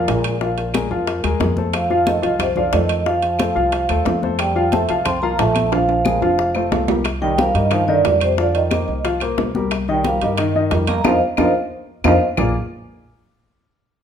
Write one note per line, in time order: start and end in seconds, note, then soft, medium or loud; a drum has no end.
0.00 1.37 A#2 medium
0.00 1.37 A#4 medium
0.07 0.85 A#1 medium
0.07 0.35 G#3 medium
0.07 0.35 G#4 medium
0.07 0.35 A#4 medium
0.07 high bongo medium
0.07 low bongo medium
0.07 high conga soft
0.07 high timbale medium
0.07 low timbale medium
0.24 high timbale medium
0.24 claves medium
0.41 0.68 F3 medium
0.41 0.68 F4 medium
0.41 0.69 F5 medium
0.41 high bongo medium
0.41 high conga soft
0.58 high bongo soft
0.58 high conga soft
0.58 high timbale medium
0.74 0.88 G#3 medium
0.74 0.88 G#4 medium
0.74 0.88 A#4 medium
0.74 high bongo medium
0.74 high conga loud
0.74 high timbale medium
0.74 low timbale medium
0.74 claves medium
0.91 1.22 F2 medium
0.91 1.18 F3 medium
0.91 1.18 F4 medium
0.91 1.18 F5 medium
0.91 high conga soft
1.07 high bongo medium
1.07 high conga soft
1.07 high timbale medium
1.24 1.39 D#2 medium
1.24 1.37 G#3 medium
1.24 1.37 G#4 medium
1.24 1.38 A#4 medium
1.24 high bongo soft
1.24 high conga soft
1.24 high timbale medium
1.24 claves medium
1.40 2.18 F2 medium
1.40 1.54 G#3 medium
1.40 1.54 G#4 medium
1.40 1.55 A#4 medium
1.40 high bongo medium
1.40 low bongo medium
1.40 high conga medium
1.40 low timbale medium
1.57 1.85 A3 medium
1.57 1.85 A4 medium
1.57 1.85 C5 medium
1.57 high bongo soft
1.57 high conga medium
1.73 2.04 F3 medium
1.73 2.08 F5 medium
1.73 high bongo medium
1.73 high conga soft
1.73 high timbale medium
1.73 claves medium
1.90 2.04 F3 medium
1.90 2.04 F4 medium
1.90 2.04 F5 medium
1.90 high conga soft
2.06 2.37 D#3 medium
2.06 2.20 A3 medium
2.06 2.20 A4 medium
2.06 2.21 C5 medium
2.06 2.41 D#5 medium
2.06 high bongo medium
2.06 high conga loud
2.06 high timbale medium
2.06 low timbale medium
2.22 2.70 C2 medium
2.22 2.50 F3 medium
2.22 2.50 F4 medium
2.22 2.50 F5 medium
2.22 high conga soft
2.22 high timbale medium
2.39 2.47 C3 medium
2.39 2.47 C5 medium
2.39 high bongo medium
2.39 high conga soft
2.39 low conga medium
2.39 high timbale medium
2.39 claves medium
2.56 2.71 D3 medium
2.56 2.70 F3 medium
2.56 2.70 F4 medium
2.56 2.74 D5 medium
2.56 2.71 F5 medium
2.56 high conga soft
2.56 low conga medium
2.72 3.50 F2 medium
2.72 3.04 D#3 medium
2.72 3.00 A3 medium
2.72 3.00 A4 medium
2.72 3.00 C5 medium
2.72 3.07 D#5 medium
2.72 high bongo medium
2.72 low bongo medium
2.72 high conga soft
2.72 high timbale medium
2.72 low timbale medium
2.89 high timbale medium
2.89 claves medium
3.06 3.33 F3 medium
3.06 4.18 F3 medium
3.06 3.34 F4 medium
3.06 4.18 F5 medium
3.06 3.34 F5 medium
3.06 high bongo medium
3.06 high conga soft
3.23 high bongo soft
3.23 high conga soft
3.23 high timbale medium
3.39 3.53 A3 medium
3.39 3.53 A4 medium
3.39 3.53 C5 medium
3.39 high bongo medium
3.39 high conga loud
3.39 high timbale medium
3.39 low timbale medium
3.39 claves medium
3.55 3.87 C2 medium
3.55 3.83 F3 medium
3.55 3.83 F4 medium
3.55 3.83 F5 medium
3.55 high conga soft
3.72 high bongo medium
3.72 high conga soft
3.72 high timbale medium
3.89 4.05 D#2 medium
3.89 4.03 A3 medium
3.89 4.03 A4 medium
3.89 4.03 C5 medium
3.89 high bongo soft
3.89 high conga soft
3.89 high timbale medium
3.89 claves medium
4.05 4.83 F2 loud
4.05 4.19 A3 medium
4.05 4.20 A4 medium
4.05 4.20 C5 medium
4.05 high bongo medium
4.05 low bongo medium
4.05 high conga medium
4.05 low timbale medium
4.23 4.50 A3 medium
4.23 4.50 A4 medium
4.23 4.50 C5 medium
4.23 high bongo soft
4.23 high conga medium
4.39 4.70 G3 medium
4.39 4.70 G5 medium
4.39 high bongo medium
4.39 high conga soft
4.39 high timbale loud
4.39 claves medium
4.56 4.69 F3 medium
4.56 4.69 F4 medium
4.56 4.69 F5 medium
4.56 high conga soft
4.71 5.03 A3 medium
4.71 4.86 A3 medium
4.71 4.86 A4 medium
4.71 4.86 C5 medium
4.71 5.06 A5 medium
4.71 high bongo medium
4.71 high conga loud
4.71 high timbale medium
4.71 low timbale medium
4.89 5.35 C2 medium
4.89 5.16 F3 medium
4.89 5.17 F4 medium
4.89 5.17 F5 medium
4.89 high conga soft
4.89 high timbale medium
5.05 5.21 C4 medium
5.05 5.21 C6 loud
5.05 high bongo medium
5.05 high conga soft
5.05 low conga medium
5.05 high timbale loud
5.05 claves medium
5.22 5.36 F3 loud
5.22 5.37 A#3 medium
5.22 5.36 F4 medium
5.22 5.36 F5 loud
5.22 5.39 A#5 loud
5.22 high conga soft
5.39 6.16 A#1 loud
5.39 5.70 A3 medium
5.39 5.66 A3 medium
5.39 5.66 A4 medium
5.39 5.67 C5 medium
5.39 5.69 A5 loud
5.39 high bongo medium
5.39 low bongo medium
5.39 high conga soft
5.39 high timbale medium
5.39 low timbale medium
5.55 high conga medium
5.55 high timbale medium
5.55 claves medium
5.72 5.99 F3 medium
5.72 6.85 F3 medium
5.72 6.00 F4 medium
5.72 6.84 F5 medium
5.72 6.00 F5 medium
5.72 high bongo medium
5.72 high conga soft
5.72 high timbale loud
5.89 high bongo soft
5.89 high conga soft
5.89 high timbale medium
6.05 6.19 G#3 medium
6.05 6.19 G#4 medium
6.05 6.19 A#4 medium
6.05 high bongo medium
6.05 high conga loud
6.05 claves medium
6.22 6.68 F1 medium
6.22 6.49 F3 medium
6.22 6.49 F4 medium
6.22 6.49 F5 medium
6.22 high conga soft
6.22 high timbale medium
6.39 high bongo medium
6.39 high conga soft
6.55 6.69 A3 medium
6.55 6.69 A4 medium
6.55 6.69 C5 medium
6.55 high bongo soft
6.55 high conga soft
6.55 low timbale medium
6.55 claves medium
6.72 7.49 C2 medium
6.72 6.86 A3 medium
6.72 6.86 A4 medium
6.72 6.86 C5 medium
6.72 high bongo medium
6.72 low bongo medium
6.72 high conga medium
6.72 low timbale loud
6.88 7.02 G3 medium
6.88 7.02 G4 medium
6.88 7.02 A#4 medium
6.88 high bongo soft
6.88 high conga medium
6.88 low timbale loud
7.04 high bongo medium
7.04 high conga soft
7.04 high timbale medium
7.04 claves medium
7.22 7.35 D#3 medium
7.22 7.37 G3 medium
7.22 7.35 D#4 medium
7.22 7.35 D#5 medium
7.22 7.39 G5 loud
7.22 high conga soft
7.37 7.54 F3 medium
7.37 7.51 G3 medium
7.37 7.52 G4 medium
7.37 7.52 A#4 medium
7.37 7.55 F5 medium
7.37 high bongo medium
7.37 high conga loud
7.37 high timbale medium
7.37 low timbale medium
7.54 8.01 G2 medium
7.54 7.71 D#3 medium
7.54 7.68 G3 medium
7.54 7.68 G4 medium
7.54 7.68 A#4 medium
7.54 7.72 D#5 medium
7.54 high conga soft
7.54 high timbale medium
7.71 7.85 D#3 medium
7.71 7.87 F3 medium
7.71 7.85 D#4 medium
7.71 7.85 D#5 medium
7.71 7.88 F5 medium
7.71 high bongo medium
7.71 high conga soft
7.71 high timbale medium
7.71 claves medium
7.88 8.19 D3 medium
7.88 8.02 D#3 medium
7.88 8.02 D#4 medium
7.88 8.22 D5 loud
7.88 8.02 D#5 medium
7.88 high conga soft
8.05 8.82 F2 medium
8.05 8.32 G3 medium
8.05 8.32 G4 medium
8.05 8.32 A#4 medium
8.05 high bongo medium
8.05 low bongo medium
8.05 high conga soft
8.05 high timbale medium
8.05 low timbale medium
8.21 8.37 C3 medium
8.21 8.39 C5 medium
8.21 high timbale medium
8.21 claves medium
8.38 8.54 D3 medium
8.38 8.65 F3 medium
8.38 8.66 F4 medium
8.38 8.56 D5 medium
8.38 8.66 F5 medium
8.38 high bongo medium
8.38 high conga soft
8.54 9.02 D#3 medium
8.54 9.02 D#5 medium
8.54 high bongo soft
8.54 high conga soft
8.54 high timbale medium
8.71 8.99 A#3 medium
8.71 8.99 A#4 medium
8.71 8.99 C5 medium
8.71 high bongo medium
8.71 high conga medium
8.71 high timbale medium
8.71 low timbale medium
8.71 claves medium
8.88 9.35 C2 medium
8.88 high conga soft
9.04 9.18 F3 medium
9.04 9.19 F4 medium
9.04 9.19 F5 medium
9.04 high bongo medium
9.04 high conga soft
9.04 high timbale medium
9.20 9.49 A#3 medium
9.20 9.49 A#4 medium
9.20 9.49 C5 medium
9.20 high bongo soft
9.20 high conga soft
9.20 high timbale medium
9.20 claves medium
9.38 10.16 C2 medium
9.38 high bongo medium
9.38 low bongo medium
9.38 high conga medium
9.38 low timbale medium
9.55 9.82 G3 medium
9.55 9.83 G4 medium
9.55 9.83 A#4 medium
9.55 high bongo soft
9.55 high conga medium
9.71 high bongo medium
9.71 high conga soft
9.71 high timbale medium
9.71 claves medium
9.88 10.02 D#3 medium
9.88 10.04 G3 medium
9.88 10.02 D#4 medium
9.88 10.02 D#5 medium
9.88 10.04 G5 medium
9.88 high conga soft
10.04 10.21 F3 medium
10.04 10.19 G3 medium
10.04 10.19 G4 medium
10.04 10.19 A#4 medium
10.04 10.23 F5 medium
10.04 high bongo soft
10.04 high conga medium
10.04 high timbale medium
10.04 low timbale medium
10.21 10.68 G2 medium
10.21 10.85 D#3 medium
10.21 10.35 G3 medium
10.21 10.35 G4 medium
10.21 10.36 A#4 medium
10.21 10.91 D#5 medium
10.21 high conga soft
10.21 high timbale medium
10.38 10.52 D#3 medium
10.38 10.52 D#4 medium
10.38 10.52 D#5 medium
10.38 high bongo medium
10.38 high conga soft
10.38 high timbale medium
10.38 claves medium
10.55 10.69 D#3 medium
10.55 10.69 D#4 medium
10.55 10.69 D#5 medium
10.55 high conga soft
10.71 11.03 F2 medium
10.71 10.99 G3 medium
10.71 10.99 G4 medium
10.71 11.00 A#4 medium
10.71 high bongo medium
10.71 low bongo medium
10.71 high conga soft
10.71 high timbale medium
10.71 low timbale medium
10.87 11.04 A#3 medium
10.87 11.04 A#5 loud
10.87 high conga medium
10.87 high timbale medium
10.87 claves medium
11.04 11.17 F2 loud
11.04 11.12 F3 medium
11.04 11.15 D#4 medium
11.04 11.16 F4 medium
11.04 11.15 A#4 medium
11.04 11.15 C5 medium
11.04 11.15 D#5 medium
11.04 11.15 F5 medium
11.04 high bongo medium
11.04 high conga medium
11.04 high timbale loud
11.04 claves loud
11.37 11.51 F2 medium
11.37 11.46 F3 medium
11.37 11.49 D#4 medium
11.37 11.49 F4 loud
11.37 11.49 A#4 medium
11.37 11.49 C5 medium
11.37 11.49 D#5 medium
11.37 11.49 F5 medium
11.37 high bongo medium
11.37 high conga loud
11.37 high timbale medium
11.37 claves loud
12.04 12.17 F2 medium
12.04 12.13 F3 medium
12.04 12.16 D#4 medium
12.04 12.16 F4 medium
12.04 12.16 A#4 medium
12.04 12.15 C5 loud
12.04 12.15 D#5 loud
12.04 12.15 F5 medium
12.04 high bongo medium
12.04 high conga loud
12.04 high timbale loud
12.04 claves loud
12.37 12.54 A#1 loud
12.37 12.53 A#3 medium
12.37 12.54 F4 medium
12.37 12.54 G#4 medium
12.37 12.54 A#4 medium
12.37 12.54 D5 medium
12.37 12.54 F5 medium
12.37 low bongo medium
12.37 low conga loud
12.37 low timbale loud
12.37 claves loud